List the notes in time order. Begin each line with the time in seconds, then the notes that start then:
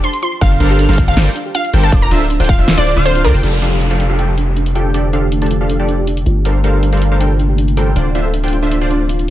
0.04 D4 C6, closed hi-hat
0.13 closed hi-hat
0.22 F4 C6, closed hi-hat
0.41 G1 G3 D4 A4 A#4 C5 F5 F6, kick, closed hi-hat
0.60 G1 G3 D4 A4 A#4 C5 F5 F6, closed hi-hat
0.70 G4
0.79 D4, closed hi-hat
0.89 G1 G3 D4 A4 A#4 C5 F5 F6, closed hi-hat
0.93 closed hi-hat
0.98 F4, kick, closed hi-hat
1.08 G1 G3 D4 A4 A#4 C5 F5 F6
1.17 G1 G3 D4 A4 A#4 C5 G5 G6, snare, closed hi-hat
1.36 D4, closed hi-hat
1.45 G4
1.55 D4 F5, closed hi-hat
1.64 closed hi-hat
1.73 G1 G3 D4 F4 A4 A#4 C5 G5 G6, closed hi-hat
1.83 A5
1.92 D1 D4 C5 D5 D6, kick, closed hi-hat
2.02 A#5
2.11 D1 D3 D4 F4 C5 E5 E6, closed hi-hat
2.21 A4
2.30 D4, closed hi-hat
2.40 D1 D3 D4 F4 C5 G5 G6, closed hi-hat
2.44 closed hi-hat
2.49 F4 F5, kick, closed hi-hat
2.59 D1 D3 D4 F4 C5 E5 E6
2.68 D4, snare, closed hi-hat
2.78 D1 D3 D4 F4 C5 D5 D6
2.87 C5, closed hi-hat
2.96 D1 D3 D4 F4 C5 F5 F6
3.05 A4 C5, closed hi-hat
3.15 F4, closed hi-hat
3.24 D2 D3 D4 F4 A4 A#4 C5 D5 D6, closed hi-hat
3.34 F1 D3 D4 F4 C5 G5 G6
3.43 F1 D3 F3 A3 D4 G4 A4 F5, closed hi-hat, crash, downlifter
3.62 F3 D4 G4 A4 F5, closed hi-hat
3.72 G4
3.81 D4, closed hi-hat
3.91 F3 D4 G4 A4 F5, closed hi-hat
3.95 closed hi-hat
4.00 F4, closed hi-hat
4.10 F3 D4 G4 A4 F5
4.19 F3 D4 G4 A4 G5, closed hi-hat
4.38 D4, closed hi-hat
4.47 G4
4.56 D4, closed hi-hat
4.66 closed hi-hat
4.75 F3 D4 F4 G4 A4 G5, closed hi-hat
4.94 F3 D4 G4 A4 D5, closed hi-hat
5.13 F3 D4 G4 A4 F5, closed hi-hat
5.23 G4
5.32 D4, closed hi-hat
5.42 F3 D4 G4 A4 A5, closed hi-hat
5.46 closed hi-hat
5.51 F4, closed hi-hat
5.61 F3 D4 G4 A4 F5
5.70 D4, closed hi-hat
5.80 F3 D4 G4 A4 D5
5.88 D4, closed hi-hat
5.98 G4
6.07 D4, closed hi-hat
6.17 closed hi-hat
6.26 G1 C3 A3 A#3 F4, closed hi-hat
6.45 G3 D4 A4 A#4 C5 F5, closed hi-hat
6.64 G3 D4 A4 A#4 C5 F5, closed hi-hat
6.74 G4
6.83 D4, closed hi-hat
6.93 G3 D4 A4 A#4 C5 F5, closed hi-hat
6.97 closed hi-hat
7.01 F4, closed hi-hat
7.12 G3 D4 A4 A#4 C5 F5
7.20 G3 D4 A4 A#4 C5 G5, closed hi-hat
7.39 D4, closed hi-hat
7.49 G4
7.58 D4, closed hi-hat
7.68 closed hi-hat
7.77 G3 D4 F4 A4 A#4 C5 G5, closed hi-hat
7.96 D1 D3 C4 D4 F4 C5 D5, closed hi-hat
8.15 D3 D4 F4 C5 E5, closed hi-hat
8.25 A4
8.34 D4, closed hi-hat
8.44 D3 D4 F4 C5 G5, closed hi-hat
8.48 closed hi-hat
8.53 F4, closed hi-hat
8.63 D3 D4 F4 C5 E5
8.72 D4, closed hi-hat
8.81 D3 D4 F4 C5 D5
8.90 D4, closed hi-hat
9.09 F5, closed hi-hat
9.19 closed hi-hat